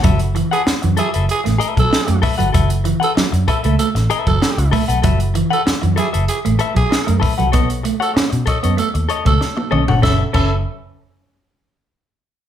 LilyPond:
<<
  \new Staff \with { instrumentName = "Clean electric guitar" } { \time 4/4 \key fis \dorian \tempo 4 = 96 <a' b' e''>16 r8 <a' b' fis''>16 r8 <a' b' e''>16 <a' b' e''>16 r8 <a' b' e''>16 r8. <a' b' e''>16 <a' b' fis''>16 | <a' b' e''>16 r8 <a' b' fis''>16 r8 <a' b' e''>16 <a' b' e''>16 r8 <a' b' e''>16 r8. <a' b' e''>16 <a' b' fis''>16 | <a' b' e''>16 r8 <a' b' fis''>16 r8 <a' b' e''>16 <a' b' e''>16 r8 <a' b' e''>16 r8. <a' b' e''>16 <a' b' fis''>16 | <a' cis'' dis''>16 r8 <a' cis'' fis''>16 r8 <a' cis'' dis''>16 <a' cis'' dis''>16 r8 <a' cis'' dis''>16 r8. <a' cis'' dis''>16 <a' cis'' fis''>16 |
<a' b' e''>16 r16 <a' b' e''>16 r2. r16 | }
  \new Staff \with { instrumentName = "Tenor saxophone" } { \time 4/4 \key fis \dorian r8. gis'16 r8 gis'16 r16 gis'16 r8 a'8. r8 | r8. a'16 r8 a'16 r16 a'16 r8 a'8. r8 | r8. a'16 r8 gis'16 r16 gis'16 r8 gis'8. r8 | r8. a'16 r8 a'16 r16 a'16 r8 a'8. r8 |
a'16 r16 a'8 r2. | }
  \new Staff \with { instrumentName = "Clean electric guitar" } { \clef bass \time 4/4 \key fis \dorian fis16 r16 e16 r8 e16 fis16 r8 a16 r16 fis16 r16 a16 r16 fis16 | fis16 r16 e16 r16 fis16 r8 a16 a16 r8 fis16 r8 a16 r16 | fis16 r16 e16 r8 e16 fis16 r8 a16 r16 fis16 r16 a16 r16 fis16 | b16 r16 a16 r16 cis'16 r8 b16 a16 r8 a16 r8 cis'16 r16 |
cis'8 cis'8 r2. | }
  \new Staff \with { instrumentName = "Fingered electric bass" } { \clef bass \time 4/4 \key fis \dorian fis,,8. r8 fis,16 r16 fis,,16 r16 a,,16 r16 b,,16 r16 fis,16 r16 g,,16 | fis,,8. r8 fis,16 r16 cis,16 r16 a,,16 r16 fis,,16 r16 cis,16 r16 b,,16 | fis,,8. r8 fis,16 r16 fis,,16 r16 a,,16 r16 b,,16 r16 fis,16 r16 bis,,16 | b,,8. r8 b,16 r16 fis,16 r16 dis,16 r16 cis,16 r8 b,,16 g,,16 |
fis,,16 r16 fis,,8 r2. | }
  \new DrumStaff \with { instrumentName = "Drums" } \drummode { \time 4/4 <hh bd>16 hh16 hh16 hh16 sn16 hh16 hh16 hh16 hh16 <hh sn>16 hh16 <hh bd>16 sn16 hh16 <hho bd>16 hh16 | <hh bd>16 hh16 hh16 hh16 sn16 hh16 <hh bd>16 hh16 hh16 <hh sn>16 hh16 <hh bd>16 sn16 hh16 <hho bd>16 hh16 | <hh bd>16 hh16 hh16 hh16 sn16 hh16 hh16 hh16 hh16 hh16 hh16 <hh bd>16 sn16 hh16 <hho bd>16 hh16 | <hh bd>16 hh16 hh16 hh16 sn16 hh16 <hh bd>16 hh16 hh16 hh16 hh16 <hh bd>16 sn16 tommh16 toml16 tomfh16 |
<bd sn>8 <cymc bd>8 r4 r4 r4 | }
>>